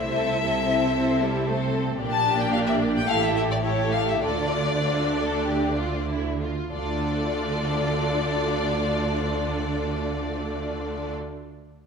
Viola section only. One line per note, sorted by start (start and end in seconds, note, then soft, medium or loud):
0.00 0.41 A3 medium
0.00 0.42 E4 medium
0.43 0.94 C4 medium
0.43 1.46 E4 medium
0.96 1.21 C4 medium
1.21 1.48 G3 medium
1.48 2.00 A3 medium
1.48 2.00 C4 medium
2.01 3.04 A#3 medium
2.01 3.04 D4 medium
3.08 3.63 A3 medium
3.08 3.63 E4 medium
3.64 4.21 A3 medium
3.64 4.21 E4 medium
4.22 6.44 A3 medium
4.22 6.49 D4 medium
6.73 11.13 A3 medium
6.73 11.13 D4 medium